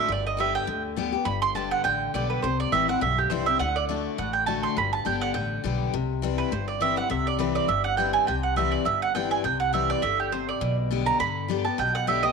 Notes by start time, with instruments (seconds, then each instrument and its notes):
0.00 steel-string acoustic guitar D4, mandolin E5
0.09 upright bass G1, steel-string acoustic guitar G2, mandolin D5
0.27 mandolin D#5
0.37 steel-string acoustic guitar D3 G3 B3 G4, mandolin E5
0.55 mandolin G5
0.67 upright bass D2, steel-string acoustic guitar D3
0.96 steel-string acoustic guitar D3 G3 B3 G4
1.12 steel-string acoustic guitar B3 G4
1.25 upright bass G1, steel-string acoustic guitar G2, mandolin B5
1.42 mandolin C6
1.55 steel-string acoustic guitar D3 G3 B3 G4, mandolin A5
1.71 mandolin F#5
1.84 upright bass A1, steel-string acoustic guitar D3, mandolin G5
2.14 upright bass B1, steel-string acoustic guitar D3 G3 B3 G4, mandolin D5
2.30 mandolin B4
2.42 upright bass C2, steel-string acoustic guitar C3, mandolin C5
2.60 mandolin D5
2.72 upright bass A1, steel-string acoustic guitar E3 G3 C4 E4, mandolin E5
2.88 steel-string acoustic guitar C4 E4, mandolin F#5
3.01 upright bass B1, steel-string acoustic guitar G2, mandolin E5
3.18 mandolin G4
3.30 upright bass C2, steel-string acoustic guitar E3 G3 C4 E4, mandolin C5
3.46 steel-string acoustic guitar C4 E4, mandolin E5
3.59 upright bass D2, steel-string acoustic guitar D3, mandolin F#5
3.76 mandolin D5
3.89 steel-string acoustic guitar D3 A3 D4 F#4
4.18 upright bass A1, steel-string acoustic guitar A2, mandolin F#5
4.33 mandolin G5
4.46 steel-string acoustic guitar D3 A3 D4 F#4, mandolin A5
4.63 mandolin C6
4.76 upright bass G1, steel-string acoustic guitar G2, mandolin B5
4.93 mandolin A5
5.05 upright bass G1, steel-string acoustic guitar D3 G3 B3 G4, mandolin G5
5.21 mandolin F#5
5.34 upright bass A1, steel-string acoustic guitar D3, mandolin G5
5.64 upright bass B1, steel-string acoustic guitar D3 G3 B3 G4
5.94 upright bass C2, steel-string acoustic guitar C3
6.22 steel-string acoustic guitar E3 G3 C4 E4
6.38 mandolin B4
6.52 upright bass G1, steel-string acoustic guitar G2, mandolin C5
6.68 mandolin D5
6.80 steel-string acoustic guitar E3 G3 C4 E4, mandolin E5
6.96 steel-string acoustic guitar C4 E4, mandolin F#5
7.10 upright bass C2, steel-string acoustic guitar C3, mandolin E5
7.27 mandolin D5
7.39 steel-string acoustic guitar E3 G3 C4 E4, mandolin B4
7.55 mandolin D5
7.68 upright bass G1, steel-string acoustic guitar G2, mandolin E5
7.84 mandolin F#5
7.97 steel-string acoustic guitar E3 G3 C4 E4, mandolin G5
8.13 mandolin G#5
8.27 upright bass C2, steel-string acoustic guitar C3, mandolin G5
8.43 mandolin F#5
8.56 steel-string acoustic guitar E3 G3 C4 E4, mandolin E5
8.72 mandolin D5
8.85 upright bass G1, steel-string acoustic guitar G2, mandolin E5
9.02 mandolin F#5
9.15 steel-string acoustic guitar E3 G3 C4 E4, mandolin G5
9.31 mandolin G#5
9.44 upright bass C2, steel-string acoustic guitar C3, mandolin G5
9.60 mandolin F#5
9.73 steel-string acoustic guitar E3 G3 C4 E4, mandolin E5
9.90 mandolin D5
10.02 upright bass G1, steel-string acoustic guitar D3, mandolin E5
10.20 mandolin G4
10.32 steel-string acoustic guitar C3, mandolin C5
10.49 mandolin D5
10.61 upright bass B1, steel-string acoustic guitar B2
10.91 steel-string acoustic guitar D3 G3 B3 G4
11.06 mandolin A#5
11.20 upright bass G2, steel-string acoustic guitar D3, mandolin B5
11.48 steel-string acoustic guitar D3 G3 B3 G4
11.65 steel-string acoustic guitar B3 G4, mandolin A5
11.78 upright bass B1, steel-string acoustic guitar B2, mandolin G5
11.95 mandolin F#5
12.07 steel-string acoustic guitar D3 G3 B3 G4, mandolin E5
12.23 steel-string acoustic guitar B3 G4, mandolin D#5